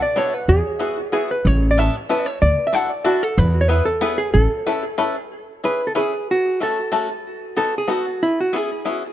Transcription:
0.02 D5
0.16 B3 D4 F#4 A4 C#5
0.34 B4
0.48 E2 G#4
0.79 B3 E4 F#4 G#4
1.12 B3 E4 F#4 G#4
1.31 B4
1.45 A1 C#5
1.71 D5
1.77 B3 C#4 E4 A4 E5
2.09 B3 C#4 E4 A4 B4
2.26 C#5
2.42 D2 D5
2.67 E5
2.72 D4 E4 F#4 A4 F#5
3.04 D4 E4 F#4 A4
3.23 A4
3.38 E2 B4
3.61 C#5
3.68 B3 E4 G#4 B4
3.85 A4
4.01 B3 E4 G#4 B4
4.18 G#4
4.34 A1 A4
4.67 C#4 E4 A4 B4
4.98 C#4 E4 A4 B4
5.64 C#4 E4 G#4 B4
5.87 A4
5.95 C#4 E4 G#4 B4
6.31 F#4
6.60 A3 C#4 F#4 A4
6.92 A3 C#4 F#4 A4
7.57 B3 D#4 F#4 A4
7.78 G#4
7.88 B3 D#4 F#4 A4
8.23 E4
8.41 F#4
8.53 B3 C#4 E4 G#4
8.85 B3 C#4 E4 G#4

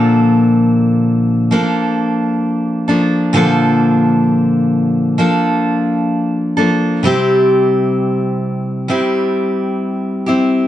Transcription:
Already playing: A#2 D3 F3 A#3 D4 A4
1.51 F3 A#3 D4 A4
2.88 F3 A#3 D4 A4
3.33 A#2 D3 F3 A#3 D4 A4
5.18 F3 A#3 D4 A4
6.57 F3 A#3 D4 A4
7.03 C3 G3 C4 E4
7.07 G4
8.88 G3 C4 E4 G4
10.26 C4 E4 G4

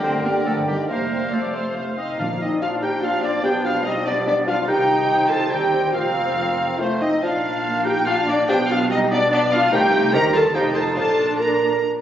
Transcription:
Already playing: D3 G4 A#4 D5 G5
0.03 G1 A3 C4 C5
0.24 G3 A#3 G4 A#4 D5
0.45 G1 F3 A3 A4
0.67 D#3 G3 G4 A#4 D5
0.88 F1 C3 G3 A#3 A#4 C5 F5
1.11 C5 F5
1.32 F1 C3 F3 A3 A4 C5 D5 F5
1.54 C5 F5
1.76 F1 A3 C4 C5 F5
1.97 C4 D#4 C5 D#5 F5
2.18 A#1 A#2 F3 A#3 D4 F4 D5 F5
2.39 C4 D#4 D#5
2.61 D4 F4 F5
2.82 D#4 G4 G5
3.02 C4 D4 F4 F5
3.23 A#3 D4 D5
3.43 B1 B2 B3 D4 G4 G5
3.64 D4 F4 F5
3.85 G3 C4 D#4 D#5
4.06 B3 D4 D5
4.26 B3 D4 D5
4.46 D4 F4 F5
4.67 C2 C3 D#3 D#4 G4 C5 G5
5.29 F4 A4 A5
5.51 D#2 D#3 G3 C4 D#4 G4 G5
5.93 F1 F2 A#3 C4 F4 F5
6.79 A3 C4 C5
7.01 C4 D#4 D#5
7.22 A#1 A#2 F3 D4 F4 D5 F5
7.65 A#3
7.85 D#4 G4 G5
8.06 D4 F4 F5
8.27 A#3 D4 D5
8.48 B1 B2 F3 B3 D4 G4 D5 G5
8.69 D4 F4 F5
8.90 G3 C4 D#4 D#5
9.10 B3 D4 D5
9.31 B3 D4 D5
9.52 D4 F4 F5
9.72 C2 C3 D#3 A3 D#4 G4 C5 G5
10.12 D#2 D#3 G3 G4 A#4 C5 A#5
10.33 F4 A4 A5
10.54 F1 F2 F3 D#4 G4 D#5 G5
10.74 F4 A4 A5
10.95 A#1 A#2 F3 D4 F4 A4 D5 A5
11.39 F4 A#4 A#5

